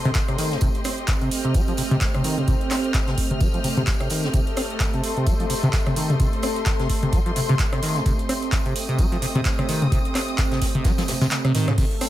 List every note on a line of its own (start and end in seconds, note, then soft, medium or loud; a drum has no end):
0.00 11.77 A3 medium
0.00 11.78 C4 medium
0.00 11.78 G4 medium
0.00 0.64 A4 medium
0.00 11.78 D#5 medium
0.00 1.32 C6 medium
0.05 0.11 C3 loud
0.05 closed hi-hat soft
0.05 mid tom medium
0.15 kick loud
0.15 snare loud
0.15 clap loud
0.15 closed hi-hat medium
0.15 tambourine medium
0.28 0.37 C3 medium
0.28 cross-stick medium
0.28 closed hi-hat soft
0.38 0.53 D#3 medium
0.38 snare soft
0.38 open hi-hat loud
0.38 tambourine medium
0.52 0.57 C3 medium
0.52 snare soft
0.52 closed hi-hat soft
0.61 0.69 C3 medium
0.61 4.36 C4 medium
0.61 kick loud
0.61 closed hi-hat medium
0.61 tambourine medium
0.75 closed hi-hat soft
0.84 0.89 C4 medium
0.84 cross-stick medium
0.84 open hi-hat loud
0.84 tambourine medium
0.98 closed hi-hat soft
1.07 kick loud
1.07 snare loud
1.07 clap loud
1.07 closed hi-hat medium
1.07 tambourine medium
1.21 1.30 C3 medium
1.21 closed hi-hat soft
1.30 5.04 F6 medium
1.30 open hi-hat loud
1.30 tambourine medium
1.45 1.56 C3 medium
1.45 closed hi-hat soft
1.54 1.62 G3 medium
1.54 kick loud
1.54 closed hi-hat medium
1.54 tambourine medium
1.68 1.73 F3 medium
1.68 closed hi-hat soft
1.77 1.82 C3 medium
1.77 open hi-hat loud
1.77 tambourine medium
1.91 1.97 C3 loud
1.91 closed hi-hat soft
1.91 mid tom medium
2.01 kick loud
2.01 snare loud
2.01 clap loud
2.01 closed hi-hat medium
2.01 tambourine medium
2.14 2.23 C3 medium
2.14 cross-stick medium
2.14 closed hi-hat soft
2.14 mid tom medium
2.24 2.39 D#3 medium
2.24 open hi-hat loud
2.24 tambourine medium
2.38 2.43 C3 medium
2.38 closed hi-hat soft
2.38 mid tom loud
2.48 2.55 C3 medium
2.48 kick loud
2.48 closed hi-hat medium
2.48 tambourine medium
2.61 closed hi-hat soft
2.70 2.75 C4 medium
2.70 cross-stick medium
2.70 clap medium
2.70 open hi-hat loud
2.70 tambourine medium
2.84 closed hi-hat soft
2.94 kick loud
2.94 snare loud
2.94 clap loud
2.94 closed hi-hat medium
2.94 tambourine medium
3.07 3.16 C3 medium
3.07 snare medium
3.07 closed hi-hat soft
3.18 kick medium
3.18 open hi-hat loud
3.18 tambourine medium
3.31 3.42 C3 medium
3.31 closed hi-hat soft
3.31 mid tom medium
3.40 3.48 G3 medium
3.40 kick loud
3.40 closed hi-hat medium
3.40 tambourine medium
3.54 3.59 F3 medium
3.54 closed hi-hat soft
3.64 3.68 C3 medium
3.64 open hi-hat loud
3.64 mid tom medium
3.64 tambourine medium
3.77 3.83 C3 loud
3.77 closed hi-hat soft
3.77 mid tom medium
3.87 kick loud
3.87 snare loud
3.87 clap loud
3.87 closed hi-hat medium
3.87 tambourine medium
4.00 4.09 C3 medium
4.00 cross-stick medium
4.00 closed hi-hat soft
4.10 4.25 D#3 medium
4.10 snare soft
4.10 open hi-hat loud
4.10 tambourine medium
4.24 4.29 C3 medium
4.24 snare soft
4.24 closed hi-hat soft
4.33 4.41 C3 medium
4.33 8.09 A4 medium
4.33 kick loud
4.33 closed hi-hat medium
4.33 tambourine medium
4.47 closed hi-hat soft
4.57 4.61 C4 medium
4.57 cross-stick medium
4.57 open hi-hat loud
4.57 tambourine medium
4.70 closed hi-hat soft
4.80 kick loud
4.80 snare loud
4.80 clap loud
4.80 closed hi-hat medium
4.80 tambourine medium
4.93 5.02 C3 medium
4.93 closed hi-hat soft
5.02 8.76 C6 medium
5.02 open hi-hat loud
5.02 tambourine medium
5.17 5.29 C3 medium
5.17 closed hi-hat soft
5.26 5.34 G3 medium
5.26 kick loud
5.26 closed hi-hat medium
5.26 tambourine medium
5.39 5.46 F3 medium
5.39 closed hi-hat soft
5.50 5.54 C3 medium
5.50 open hi-hat loud
5.50 tambourine medium
5.63 5.69 C3 loud
5.63 closed hi-hat soft
5.63 mid tom medium
5.73 kick loud
5.73 snare loud
5.73 clap loud
5.73 closed hi-hat medium
5.73 tambourine medium
5.87 5.95 C3 medium
5.87 cross-stick medium
5.87 closed hi-hat soft
5.87 mid tom loud
5.96 6.11 D#3 medium
5.96 open hi-hat loud
5.96 tambourine medium
6.10 6.15 C3 medium
6.10 closed hi-hat soft
6.10 mid tom loud
6.20 6.27 C3 medium
6.20 kick loud
6.20 closed hi-hat medium
6.20 tambourine medium
6.33 closed hi-hat soft
6.43 6.47 C4 medium
6.43 cross-stick medium
6.43 open hi-hat loud
6.43 tambourine medium
6.56 closed hi-hat soft
6.66 kick loud
6.66 snare loud
6.66 clap loud
6.66 closed hi-hat medium
6.66 tambourine medium
6.79 6.88 C3 medium
6.79 snare medium
6.79 closed hi-hat soft
6.89 kick medium
6.89 open hi-hat loud
6.89 tambourine medium
7.03 7.14 C3 medium
7.03 closed hi-hat soft
7.03 mid tom medium
7.13 7.20 G3 medium
7.13 kick loud
7.13 closed hi-hat medium
7.13 tambourine medium
7.26 7.32 F3 medium
7.26 closed hi-hat soft
7.36 7.40 C3 medium
7.36 open hi-hat loud
7.36 mid tom medium
7.36 tambourine medium
7.49 7.55 C3 loud
7.49 closed hi-hat soft
7.49 mid tom medium
7.59 kick loud
7.59 snare loud
7.59 clap loud
7.59 closed hi-hat medium
7.59 tambourine medium
7.72 7.81 C3 medium
7.72 cross-stick medium
7.72 closed hi-hat soft
7.82 7.97 D#3 medium
7.82 snare soft
7.82 open hi-hat loud
7.82 tambourine medium
7.96 8.01 C3 medium
7.96 snare soft
7.96 closed hi-hat soft
8.06 8.13 C3 medium
8.06 11.81 C4 medium
8.06 kick loud
8.06 closed hi-hat loud
8.06 tambourine medium
8.19 closed hi-hat soft
8.29 8.33 C4 medium
8.29 cross-stick medium
8.29 open hi-hat loud
8.29 tambourine medium
8.42 closed hi-hat soft
8.52 kick loud
8.52 snare loud
8.52 clap loud
8.52 closed hi-hat medium
8.52 tambourine medium
8.66 8.74 C3 medium
8.66 closed hi-hat soft
8.74 11.81 D#6 medium
8.74 open hi-hat loud
8.74 tambourine medium
8.89 9.00 C3 medium
8.89 closed hi-hat soft
8.99 9.06 G3 medium
8.99 kick loud
8.99 closed hi-hat medium
8.99 tambourine medium
9.12 9.18 F3 medium
9.12 closed hi-hat soft
9.22 9.26 C3 medium
9.22 open hi-hat medium
9.22 tambourine medium
9.35 9.41 C3 loud
9.35 closed hi-hat soft
9.35 mid tom medium
9.45 kick loud
9.45 snare loud
9.45 clap loud
9.45 closed hi-hat medium
9.45 tambourine medium
9.59 9.67 C3 medium
9.59 cross-stick medium
9.59 closed hi-hat soft
9.59 mid tom medium
9.68 9.83 D#3 medium
9.68 open hi-hat loud
9.68 tambourine medium
9.82 9.87 C3 medium
9.82 closed hi-hat soft
9.82 mid tom loud
9.92 9.99 C3 medium
9.92 kick loud
9.92 closed hi-hat loud
9.92 tambourine medium
10.05 closed hi-hat soft
10.15 10.19 C4 medium
10.15 cross-stick medium
10.15 clap medium
10.15 open hi-hat loud
10.15 tambourine medium
10.28 closed hi-hat soft
10.38 kick loud
10.38 snare loud
10.38 clap loud
10.38 closed hi-hat loud
10.38 tambourine medium
10.51 10.60 C3 medium
10.51 snare medium
10.51 closed hi-hat soft
10.62 kick medium
10.62 snare loud
10.62 open hi-hat loud
10.62 tambourine medium
10.75 10.86 C3 medium
10.75 closed hi-hat soft
10.75 mid tom medium
10.84 10.92 G3 medium
10.84 kick loud
10.84 snare loud
10.84 closed hi-hat loud
10.84 high tom medium
10.84 tambourine medium
10.98 11.04 F3 medium
10.98 snare loud
10.98 closed hi-hat soft
10.98 high tom medium
10.98 tambourine medium
11.08 11.13 C3 medium
11.08 snare loud
11.08 open hi-hat loud
11.08 mid tom medium
11.08 tambourine medium
11.21 11.27 C3 loud
11.21 snare loud
11.21 closed hi-hat soft
11.21 mid tom medium
11.21 tambourine medium
11.31 snare loud
11.31 clap loud
11.31 closed hi-hat loud
11.31 mid tom medium
11.31 tambourine medium
11.45 11.53 C3 medium
11.45 cross-stick medium
11.45 closed hi-hat soft
11.45 mid tom medium
11.55 11.69 D#3 medium
11.55 snare medium
11.55 mid tom loud
11.55 open hi-hat loud
11.55 tambourine medium
11.67 11.73 C3 medium
11.67 cross-stick medium
11.67 snare soft
11.67 closed hi-hat soft
11.67 mid tom medium
11.78 11.85 C3 medium
11.78 12.09 A3 medium
11.78 12.09 A4 medium
11.78 kick loud
11.78 closed hi-hat loud
11.78 tambourine medium
11.78 crash loud
11.91 closed hi-hat soft
12.01 12.06 C4 medium
12.01 cross-stick medium
12.01 open hi-hat loud
12.01 tambourine medium